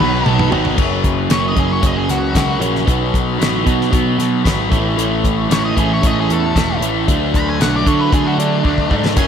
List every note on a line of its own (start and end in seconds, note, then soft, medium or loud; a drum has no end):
0.00 0.25 B1 loud
0.00 0.22 B2 medium
0.00 0.50 B2 loud
0.00 0.23 F#3 loud
0.00 0.51 F#3 loud
0.00 0.23 B3 medium
0.00 0.51 B3 loud
0.00 0.77 B3 medium
0.00 0.24 D#4 loud
0.00 0.50 D#4 loud
0.00 0.77 D#4 medium
0.00 0.77 F#4 medium
0.00 0.28 B4 medium
0.00 0.77 C#5 medium
0.00 high tom medium
0.23 0.51 B1 medium
0.23 0.49 B2 loud
0.23 0.49 F#3 loud
0.23 0.50 B3 loud
0.23 0.50 D#4 loud
0.23 mid tom medium
0.28 0.48 A4 medium
0.39 mid tom medium
0.50 0.77 G#1 loud
0.50 0.76 B2 medium
0.50 0.76 F#3 loud
0.50 0.77 F#3 medium
0.50 0.76 B3 medium
0.50 0.77 B3 medium
0.50 0.76 D#4 medium
0.50 0.76 D#4 loud
0.50 floor tom loud
0.54 0.78 B2 medium
0.65 floor tom loud
0.76 1.27 F#1 medium
0.76 1.27 F#2 medium
0.76 1.28 C#3 medium
0.76 1.29 F#3 medium
0.76 1.28 A#3 loud
0.76 1.29 C#4 loud
0.76 kick loud
0.76 crash medium
1.04 kick medium
1.04 closed hi-hat medium
1.29 1.54 F#1 medium
1.29 1.53 F#2 medium
1.29 1.54 C#3 medium
1.29 1.54 F#3 medium
1.29 1.55 A#3 medium
1.29 1.55 C#4 medium
1.29 1.44 C#5 medium
1.29 snare loud
1.29 closed hi-hat medium
1.48 1.58 D#5 medium
1.55 1.81 F#1 medium
1.55 1.80 F#2 medium
1.55 1.80 C#3 medium
1.55 1.81 F#3 medium
1.55 1.81 A#3 medium
1.55 1.81 C#4 medium
1.55 kick medium
1.55 closed hi-hat medium
1.59 1.71 G#4 medium
1.73 1.86 C#5 medium
1.81 2.07 F#1 medium
1.81 2.32 F#2 medium
1.81 2.33 C#3 medium
1.81 2.33 F#3 medium
1.81 2.33 A#3 medium
1.81 2.34 C#4 medium
1.81 kick loud
1.81 closed hi-hat loud
1.86 1.97 D#5 medium
1.97 2.09 G#4 medium
2.09 2.33 C#2 medium
2.09 2.61 F#4 loud
2.09 snare soft
2.09 closed hi-hat medium
2.33 2.59 C#2 medium
2.33 2.58 F#2 medium
2.33 2.58 C#3 medium
2.33 2.59 F#3 medium
2.33 2.59 A#3 medium
2.33 2.59 C#4 medium
2.33 kick medium
2.33 snare loud
2.33 closed hi-hat medium
2.59 2.85 A#1 medium
2.59 2.85 F#2 medium
2.59 2.85 C#3 loud
2.59 2.85 F#3 medium
2.59 2.86 A#3 medium
2.59 2.86 C#4 loud
2.59 closed hi-hat medium
2.76 snare soft
2.86 3.12 B1 medium
2.86 3.37 B2 loud
2.86 3.38 F#3 medium
2.86 3.38 B3 loud
2.86 3.39 D#4 loud
2.86 kick loud
2.86 closed hi-hat medium
3.14 3.38 B1 medium
3.14 kick medium
3.14 closed hi-hat medium
3.39 3.64 A1 medium
3.39 3.63 B2 medium
3.39 3.64 F#3 medium
3.39 3.64 B3 medium
3.39 3.65 D#4 medium
3.39 closed hi-hat medium
3.43 snare loud
3.64 3.90 B2 medium
3.64 3.91 B2 medium
3.64 3.90 F#3 medium
3.64 3.91 B3 medium
3.64 3.91 D#4 medium
3.64 kick medium
3.64 closed hi-hat medium
3.81 snare soft
3.91 4.44 B2 medium
3.91 4.17 B2 medium
3.91 4.44 F#3 medium
3.91 4.45 B3 loud
3.91 4.45 D#4 medium
3.91 kick loud
3.91 closed hi-hat medium
4.18 4.43 B2 medium
4.18 snare soft
4.18 closed hi-hat medium
4.45 4.69 G#1 medium
4.45 4.70 B2 medium
4.45 4.70 F#3 medium
4.45 4.70 B3 medium
4.45 4.70 D#4 medium
4.45 kick medium
4.45 snare loud
4.45 closed hi-hat medium
4.70 4.96 A1 loud
4.70 4.96 A2 loud
4.70 4.96 E3 loud
4.70 4.97 A3 loud
4.70 4.97 C#4 loud
4.70 4.97 E4 loud
4.70 kick loud
4.70 closed hi-hat medium
4.97 5.46 A1 medium
4.97 5.48 A2 medium
4.97 5.49 E3 loud
4.97 5.50 A3 loud
4.97 5.50 C#4 medium
4.97 5.50 E4 medium
4.97 closed hi-hat medium
5.24 kick medium
5.24 closed hi-hat medium
5.49 5.74 A1 medium
5.49 5.74 A2 medium
5.49 5.74 E3 medium
5.49 5.76 A3 loud
5.49 5.75 C#4 medium
5.49 5.76 E4 loud
5.49 5.64 C#5 loud
5.49 snare loud
5.49 closed hi-hat loud
5.65 5.77 D#5 medium
5.75 6.01 A1 medium
5.75 6.00 A2 medium
5.75 6.01 E3 medium
5.75 6.01 A3 medium
5.75 6.01 C#4 medium
5.75 6.02 E4 medium
5.75 kick medium
5.75 closed hi-hat medium
5.80 5.91 G#4 medium
5.93 6.07 C#5 medium
6.01 6.27 A1 medium
6.01 6.54 A2 medium
6.01 6.54 E3 medium
6.01 6.55 A3 medium
6.01 6.55 C#4 medium
6.01 6.55 E4 medium
6.01 kick loud
6.01 closed hi-hat loud
6.07 6.17 D#5 medium
6.20 6.32 G#4 medium
6.30 6.53 E2 medium
6.30 6.82 A4 medium
6.30 closed hi-hat medium
6.55 6.80 E1 medium
6.55 6.80 A2 medium
6.55 6.80 E3 medium
6.55 6.81 A3 medium
6.55 6.81 C#4 medium
6.55 6.81 E4 medium
6.55 kick medium
6.55 snare loud
6.55 closed hi-hat medium
6.81 7.05 A1 medium
6.81 7.06 A2 medium
6.81 7.06 E3 medium
6.81 7.06 A3 medium
6.81 7.06 C#4 medium
6.81 7.07 E4 loud
6.81 closed hi-hat medium
7.08 7.32 D2 medium
7.08 7.58 D3 medium
7.08 7.60 F#3 loud
7.08 7.59 A3 loud
7.08 7.60 D4 loud
7.08 kick loud
7.08 closed hi-hat medium
7.34 7.58 D2 medium
7.34 7.48 B5 loud
7.34 kick medium
7.34 closed hi-hat medium
7.49 7.61 G#5 medium
7.60 7.84 B1 medium
7.60 7.84 D3 medium
7.60 7.86 F#3 medium
7.60 7.85 A3 medium
7.60 7.86 D4 loud
7.60 7.73 F#5 loud
7.60 snare loud
7.60 closed hi-hat medium
7.76 7.87 D5 medium
7.85 8.11 D3 medium
7.85 8.10 D3 medium
7.85 8.12 F#3 medium
7.85 8.12 A3 medium
7.85 8.12 D4 medium
7.85 8.00 C#5 medium
7.85 kick medium
7.85 closed hi-hat medium
8.01 8.13 B4 medium
8.12 8.63 D3 medium
8.12 8.37 D3 medium
8.12 8.64 F#3 medium
8.12 8.63 A3 medium
8.12 8.64 D4 loud
8.12 8.26 G#4 medium
8.12 kick loud
8.12 closed hi-hat medium
8.26 8.39 F#4 medium
8.38 8.62 D3 medium
8.38 8.65 D4 loud
8.38 closed hi-hat medium
8.64 8.89 D2 medium
8.64 8.88 D3 medium
8.64 8.90 F#3 medium
8.64 8.89 A3 medium
8.64 8.89 D4 medium
8.64 8.91 D4 loud
8.64 kick medium
8.78 kick medium
8.90 9.15 G#2 loud
8.90 9.15 D3 medium
8.90 9.17 F#3 medium
8.90 9.15 A3 medium
8.90 9.16 D4 medium
8.90 kick medium
9.06 snare medium
9.16 9.27 F#1 medium
9.16 9.27 F#2 loud
9.16 9.27 C#3 medium
9.16 9.27 F#3 loud
9.16 9.27 A#3 medium
9.16 9.27 C#4 medium
9.16 9.27 C#4 loud
9.16 9.27 F#4 medium
9.16 9.27 C#5 medium
9.16 9.27 G#5 loud
9.16 kick loud
9.16 closed hi-hat medium
9.16 crash medium